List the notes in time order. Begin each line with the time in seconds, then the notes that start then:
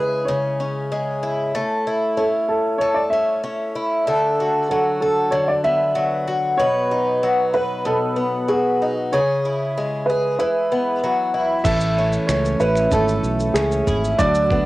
Already playing: C#3 G#3 E4 G#4 B4
0.25 C#3 C#5
0.60 C#4
0.92 G#3
1.23 E4
1.55 A3
1.87 E4
2.17 C#4 A4
2.49 A4
2.78 A3 C#5
2.95 D5
3.10 C#4 E5
3.44 C#4
3.76 E4
4.07 D3 A4
4.40 F#4
4.69 F#3 A4
5.01 A4
5.31 D3 C#5
5.48 D5
5.64 B3 E5
5.95 F#3
6.27 F#4
6.57 B2 B4 C#5
6.91 D#4
7.23 F#3
7.53 B4
7.85 B2 A4
8.16 B3
8.48 F#3 G#4
8.82 D#4
9.13 C#3 G#4 C#5
9.45 E4
9.78 G#3
10.06 G#4 B4
10.39 E3 B4
10.72 B3
11.04 F#3
11.34 E4
11.64 A1 E3 A3 E5, kick, crash, shaker
11.80 shaker
11.97 C#4
12.12 shaker
12.27 C#2 A3 C#4 C#5, finger snap, shaker
12.45 shaker
12.60 A1 C#4 E4 B4, shaker
12.75 finger snap, shaker
12.91 G#1 A3 A4, kick, shaker
13.08 shaker
13.23 B1, shaker
13.40 shaker
13.54 C#2 C#4 G#4, finger snap, shaker
13.71 shaker
13.87 G#1 E4 G#4, kick, shaker
14.04 shaker
14.18 D2 D3 F#3 D5, kick, shaker
14.35 shaker
14.50 B3 D4, kick